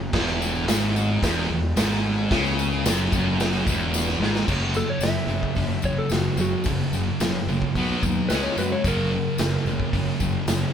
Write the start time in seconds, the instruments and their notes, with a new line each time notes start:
0.13 fingered electric bass E1, distorted electric guitar E2, kick, snare, crash
0.28 tambourine
0.42 tambourine
0.67 fingered electric bass G#1, distorted electric guitar G#2, snare, open hi-hat, tambourine
0.96 tambourine
1.23 fingered electric bass E1, distorted electric guitar E2, kick, snare, open hi-hat, tambourine
1.50 fingered electric bass E1, distorted electric guitar E2
1.76 fingered electric bass G#1, distorted electric guitar G#2, snare, open hi-hat, tambourine
1.92 tambourine
2.31 fingered electric bass C#2, distorted electric guitar C#3, kick, snare, open hi-hat, tambourine
2.46 tambourine
2.59 tambourine
2.72 tambourine
2.84 fingered electric bass F#1, distorted electric guitar F#2, snare, open hi-hat, tambourine
2.99 tambourine
3.12 fingered electric bass F#1, distorted electric guitar F#2, kick, tambourine
3.40 snare, open hi-hat, tambourine
3.53 tambourine
3.67 fingered electric bass E1, distorted electric guitar E2, kick, tambourine
3.94 snare, tambourine
4.08 snare, tambourine
4.20 fingered electric bass G#1, distorted electric guitar G#2, snare
4.35 snare, tambourine
4.47 fingered electric bass F#1, distorted electric guitar F#2 C#3 F#3, kick, crash, tambourine
4.74 distorted electric guitar F#2 C#3, electric slide guitar A4, tambourine
4.90 electric slide guitar C#5
4.99 fingered electric bass F#1, distorted electric guitar F#2 C#3, electric slide guitar E5, open hi-hat, tambourine
5.04 snare
5.27 fingered electric bass F#1, distorted electric guitar F#2 C#3, tambourine
5.43 kick
5.55 fingered electric bass F#1, distorted electric guitar F#2 C#3, kick, open hi-hat, tambourine
5.82 fingered electric bass F#1, distorted electric guitar F#2 C#3, electric slide guitar C#5, kick, tambourine
5.98 electric slide guitar A4
6.09 fingered electric bass F#1, distorted electric guitar F#2 C#3, snare, open hi-hat, tambourine
6.13 electric slide guitar F#4
6.36 fingered electric bass F#1, distorted electric guitar F#2 C#3, tambourine
6.41 electric slide guitar F#4
6.64 fingered electric bass F#1, distorted electric guitar F#2 C#3, kick, open hi-hat, tambourine
6.91 fingered electric bass F#1, distorted electric guitar F#2 C#3, tambourine
7.20 fingered electric bass F#1, distorted electric guitar F#2 C#3, snare, open hi-hat, tambourine
7.47 fingered electric bass F#1, distorted electric guitar F#2 C#3, tambourine
7.62 kick
7.75 fingered electric bass B1, distorted electric guitar B2 F#3 B3, kick, open hi-hat, tambourine
8.03 fingered electric bass D#2, distorted electric guitar B2 F#3, kick, tambourine
8.29 fingered electric bass C#2, distorted electric guitar C#3 G#3 C#4, electric slide guitar B4, snare, open hi-hat, tambourine
8.43 electric slide guitar C#5
8.56 fingered electric bass F#2, distorted electric guitar C#3 G#3, electric slide guitar B4, tambourine
8.72 electric slide guitar C#5
8.84 fingered electric bass F#1, distorted electric guitar F#2 C#3 F#3, electric slide guitar A#4, kick, open hi-hat, tambourine
9.13 distorted electric guitar F#2 C#3
9.38 fingered electric bass F#1, distorted electric guitar F#2 C#3, snare, open hi-hat, tambourine
9.65 fingered electric bass F#1, distorted electric guitar F#2 C#3, tambourine
9.80 kick
9.93 fingered electric bass F#1, distorted electric guitar F#2 C#3, kick, open hi-hat, tambourine
10.20 fingered electric bass F#1, distorted electric guitar F#2 C#3, kick, tambourine
10.46 fingered electric bass F#1, distorted electric guitar F#2 C#3, snare, open hi-hat, tambourine